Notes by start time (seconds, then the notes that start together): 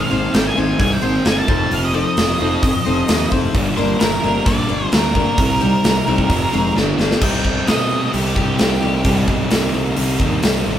0.01 F5
0.10 G#1 G#3 A#3 C4 D#4 G#4 C5
0.32 G#1 G#3 C4 G5, snare, open hi-hat
0.47 G#5
0.55 G#1 G#3 A#3 C4 D#4 G#4 C5
0.78 C2 G#3 C4 D#4 G#5, kick, open hi-hat
0.93 G5
1.02 G#1 G#3 A#3 C4 D#4 G#4 C5
1.25 G1 G#3 C4 G#5, snare, open hi-hat
1.38 A5
1.48 F1 F3 C4 D#4 F4 A4 C5, kick
1.71 F1 F3 C4 F4 F5, open hi-hat
1.85 D#5
1.93 F3 C4 D#4 A4 C5 D#5
2.17 F1 F3 C4, snare, open hi-hat
2.40 F1 F3 C4 D#4 F4 A4 C5
2.63 F2 F3 C4, kick, open hi-hat
2.85 F1 F3 C4 D#4 A4 C5
3.08 D#2 F3 C4, snare, open hi-hat
3.31 F1 F3 C4 D#4 A4 C5, kick
3.55 G1 G3 A#3 D4, kick, open hi-hat
3.77 G1 G3 A#3 D4 A#4 C5
3.99 G1 G3 A#3 A#4, snare, open hi-hat
4.23 G1 G3 A#3 D4 A#4
4.46 A#1 G3 A#3 D4 D5, kick, open hi-hat
4.69 G1 G3 A#3 D4 A#4
4.92 D2 G3 A#3 A#4, snare, open hi-hat
5.15 G3 A#3 D4 A#4, kick
5.38 C2 C3 G3 C4, kick, open hi-hat
5.61 C3 G3 C4 D#4 G4
5.84 C2 C3 G3, snare, open hi-hat
6.06 C2 C3 G3 C4 D#4 G4
6.18 kick
6.29 F1 F3 C4 F4, kick, open hi-hat
6.53 F1 D#3 F3 G#3 C4 G#4
6.75 G1 G3 B3 D4, snare
6.98 G1 F3 G3 B3 D4 G4, snare
7.11 snare
7.20 C2 C3 G3 C4 D#4 G5, kick, crash
7.45 G3, kick
7.67 B2 D#5, snare, open hi-hat
7.91 G4
8.12 C2 C3 G3 C4 D#4 G4, open hi-hat
8.36 C2 G4, kick
8.59 C2 C4, snare, open hi-hat
8.83 C2 G3
9.04 C2 C3 G3 C4 D#4, kick, open hi-hat
9.28 B1 G3, kick
9.51 C2 C4, snare, open hi-hat
9.74 C2 G4
9.96 C2 C3 G3 C4 D#4, open hi-hat
10.20 D#2 G4, kick
10.43 C2 C4, snare, open hi-hat
10.66 G#1 G3